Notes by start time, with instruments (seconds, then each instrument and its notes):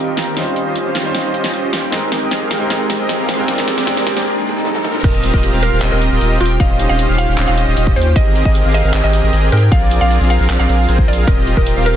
Already playing: sub bass D#1, ambient pad D#3 C4 F4 G4, grand piano G3 C4 D#4 F4 A#4, supersaw synth C4 F4 G4 A#4 D#5, harp D4 F4 G4 A#4 C5, riser
0.08 harp C4
0.17 sub bass D#2, supersaw synth C4 F4 G4 A#4 G5, harp A#4, snare, closed hi-hat
0.22 closed hi-hat
0.27 harp G4
0.34 sub bass D#1, grand piano G3 D#4 F4, harp C4, supersaw synth C#4 F4 G4 C5 D#5, ambient pad D#4, snare, closed hi-hat
0.39 grand piano C5
0.56 harp D#4, closed hi-hat
0.66 sub bass D#1, harp C4, supersaw synth C#4 F4 G4 C5 D#5
0.76 harp F4, closed hi-hat
0.86 sub bass D#1, harp C4, supersaw synth C#4 F4 G4 C5 F5
0.95 snare, closed hi-hat
1.03 sub bass D#1, grand piano G3 D#4 F4, supersaw synth C#4 F4 G4 C5 F5, harp G4
1.07 grand piano C5
1.14 sub bass D#1, harp C4, supersaw synth C#4 F4 G4 C5 D#5, snare, closed hi-hat
1.25 sub bass D#1, supersaw synth C#4 F4 G4 C5 D#5, harp D#4
1.34 harp C4, closed hi-hat
1.44 sub bass D#1, supersaw synth C#4 F4 G4 C5 D#5, snare
1.53 sub bass D#1, supersaw synth C#4 F4 G4 C5 D#5, harp F4, closed hi-hat
1.63 harp C4
1.73 sub bass D#2, supersaw synth C#4 F4 G4 C5 G5, harp G4, snare, closed hi-hat
1.78 closed hi-hat
1.83 harp F4
1.90 sub bass G#1, grand piano G#3 C4 D#4 G4, ambient pad G#3 C4 G5, supersaw synth C4 G4 G#4 A#4 D#5, harp C4, snare, closed hi-hat
1.94 grand piano A#4
2.12 harp G4, snare, closed hi-hat
2.22 sub bass G#1, supersaw synth C4 G4 G#4 A#4 D#5, harp C4
2.31 harp G#4, snare, closed hi-hat
2.41 sub bass G#1, supersaw synth C4 G4 G#4 A#4 F5, harp C4
2.51 snare, closed hi-hat
2.59 sub bass G#1, grand piano G#3 C4 D#4 G4 A#4, supersaw synth C4 G4 G#4 A#4 F5, harp A#4
2.68 sub bass G#1, grand piano G#3 C4 D#4 A#4 G5, supersaw synth C4 G4 G#4 A#4 D#5, harp C4, snare, closed hi-hat
2.90 harp G4, snare, closed hi-hat
3.00 sub bass G#1, supersaw synth C4 G4 G#4 A#4 D#5, harp C4
3.09 harp G#4, snare, closed hi-hat
3.19 sub bass G#1, supersaw synth C4 G4 G#4 A#4 F5, harp C4
3.29 snare, closed hi-hat
3.34 grand piano G#3, closed hi-hat
3.38 sub bass G#2, grand piano C4 D#4 G4 A#4, supersaw synth C4 G4 G#4 A#4 F5, harp A#4
3.46 sub bass A#1, grand piano G#3 C4 D4 G4, ambient pad A#3 D4, harp C4, supersaw synth C4 G4 G#4 A#4 D5, snare, closed hi-hat
3.50 grand piano A#4
3.58 snare
3.68 harp G4, snare, closed hi-hat
3.78 harp C4, supersaw synth C4 G4 G#4 A#4 D5, snare
3.85 sub bass A#1, grand piano G#3 C4 D4 G4, harp C4, supersaw synth C4 G4 G#4 A#4 D5, snare, closed hi-hat
3.89 grand piano A#4
3.97 snare
4.07 harp G4, snare, closed hi-hat
4.17 supersaw synth C4 G4 G#4 A#4 D5, harp C4, snare
4.26 swell
4.65 high tom
4.75 high tom
4.85 mid tom
4.95 mid tom
5.04 sub bass D#1, supersaw synth C4 F4 G4 A#4 D#5, harp C4, synth pluck A#4, digital synth lead D#5, kick, closed hi-hat, crash
5.24 harp F4, closed hi-hat
5.33 sub bass D#1, supersaw synth C4 F4 G4 A#4 D#5, harp C4, synth pluck A#4, digital synth lead D#5, kick
5.43 harp G4, closed hi-hat
5.53 sub bass D#1, supersaw synth C4 F4 G4 A#4 F5, harp C4, digital synth lead F5
5.62 synth pluck A#4, closed hi-hat
5.73 sub bass D#1, supersaw synth C4 F4 G4 A#4 F5, harp A#4, digital synth lead F5
5.82 sub bass D#1, supersaw synth C4 F4 G4 A#4 D#5, harp C4, digital synth lead D#5, clap, closed hi-hat
5.92 sub bass D#1, supersaw synth C4 F4 G4 A#4 D#5, harp F4, synth pluck A#4, digital synth lead D#5
6.01 harp C4, closed hi-hat
6.12 sub bass D#1, supersaw synth C4 F4 G4 A#4 D#5, digital synth lead D#5
6.21 sub bass D#1, supersaw synth C4 F4 G4 A#4 D#5, harp G4, digital synth lead D#5, closed hi-hat
6.31 harp C4
6.40 sub bass D#1, supersaw synth C4 F4 G4 A#4 G5, synth pluck F4, harp A#4, digital synth lead G5, closed hi-hat
6.46 closed hi-hat
6.51 harp G4
6.60 sub bass D#1, harp C4, supersaw synth C#4 F4 G4 C5 D#5, digital synth lead D#5, synth pluck F5, kick, closed hi-hat
6.79 harp D#4, closed hi-hat
6.89 sub bass D#1, harp C4, supersaw synth C#4 F4 G4 C5 D#5, digital synth lead D#5, synth pluck F5
6.99 harp F4, closed hi-hat
7.09 sub bass D#1, harp C4, supersaw synth C#4 F4 G4 C5 F5, digital synth lead F5
7.18 synth pluck F5, closed hi-hat
7.28 sub bass D#1, supersaw synth C#4 F4 G4 C5 F5, harp G4, digital synth lead F5
7.38 sub bass D#1, harp C4, supersaw synth C#4 F4 G4 C5 D#5, digital synth lead D#5, clap, closed hi-hat
7.48 sub bass D#1, supersaw synth C#4 F4 G4 C5 D#5, harp D#4, digital synth lead D#5, synth pluck F5
7.57 harp C4, closed hi-hat
7.67 sub bass D#1, supersaw synth C#4 F4 G4 C5 D#5, digital synth lead D#5
7.77 sub bass D#1, supersaw synth C#4 F4 G4 C5 D#5, harp F4, digital synth lead D#5, closed hi-hat
7.87 harp C4, kick
7.96 sub bass D#2, supersaw synth C#4 F4 G4 C5 G5, harp G4, synth pluck C5, digital synth lead G5, closed hi-hat
8.01 closed hi-hat
8.06 harp F4
8.16 sub bass G#1, supersaw synth C4 G4 G#4 A#4 D#5, harp C4, synth pluck D#5, digital synth lead D#5, kick, closed hi-hat
8.35 harp G4, closed hi-hat
8.45 sub bass G#1, supersaw synth C4 G4 G#4 A#4 D#5, harp C4, synth pluck D#5, digital synth lead D#5, kick
8.55 harp G#4, closed hi-hat
8.65 sub bass G#1, supersaw synth C4 G4 G#4 A#4 F5, harp C4, digital synth lead F5
8.74 synth pluck D#5, closed hi-hat
8.84 sub bass G#1, supersaw synth C4 G4 G#4 A#4 F5, harp A#4, digital synth lead F5
8.94 sub bass G#1, supersaw synth C4 G4 G#4 A#4 D#5, harp C4, digital synth lead D#5, clap, closed hi-hat
9.04 sub bass G#1, supersaw synth C4 G4 G#4 A#4 D#5, harp G4, synth pluck D#5, digital synth lead D#5
9.13 harp C4, closed hi-hat
9.23 sub bass G#1, supersaw synth C4 G4 G#4 A#4 D#5, digital synth lead D#5
9.33 sub bass G#1, supersaw synth C4 G4 G#4 A#4 D#5, harp G#4, digital synth lead D#5, closed hi-hat
9.43 harp C4
9.52 sub bass G#2, supersaw synth C4 G4 G#4 A#4 G5, synth pluck A#4, harp A#4, digital synth lead G5, closed hi-hat
9.57 closed hi-hat
9.62 harp G#4
9.72 sub bass A#1, supersaw synth C4 F4 G#4 A#4 D5, harp C4, digital synth lead D5, synth pluck F5, kick, closed hi-hat
9.91 harp F4, closed hi-hat
10.01 sub bass A#1, supersaw synth C4 F4 G#4 A#4 D5, harp C4, digital synth lead D5, synth pluck F5
10.11 harp G#4, closed hi-hat
10.21 sub bass A#1, supersaw synth C4 F4 G#4 A#4 F5, harp C4, digital synth lead F5
10.30 synth pluck F5, closed hi-hat
10.40 sub bass A#1, supersaw synth C4 F4 G#4 A#4 F5, harp A#4, digital synth lead F5
10.49 sub bass A#1, supersaw synth C4 F4 G#4 A#4 D5, harp C4, digital synth lead D5, clap, closed hi-hat
10.59 sub bass A#1, supersaw synth C4 F4 G#4 A#4 D5, harp F4, digital synth lead D5, synth pluck F5
10.69 sub bass A#1, supersaw synth C4 F4 G#4 A#4 F5, harp C5, digital synth lead F5, closed hi-hat
10.88 sub bass A#1, supersaw synth C4 F4 G#4 A#4 C5, harp G#4, digital synth lead C5, closed hi-hat
10.99 harp C5, kick
11.08 sub bass A#1, supersaw synth C4 F4 G#4 A#4 F5, harp F4, synth pluck D5, digital synth lead F5, closed hi-hat
11.13 closed hi-hat
11.18 harp G#4
11.27 sub bass D#1, supersaw synth C4 G4, harp C4, synth pluck A#4, digital synth lead D#5, kick, closed hi-hat
11.47 harp F4, closed hi-hat
11.57 sub bass D#1, supersaw synth C4 F4 G4 A#4 D#5, harp C4, synth pluck A#4, digital synth lead D#5, kick
11.67 harp G4, closed hi-hat
11.76 sub bass D#1, supersaw synth C4 F4 G4 A#4 F5, harp C4, digital synth lead F5
11.86 synth pluck A#4, closed hi-hat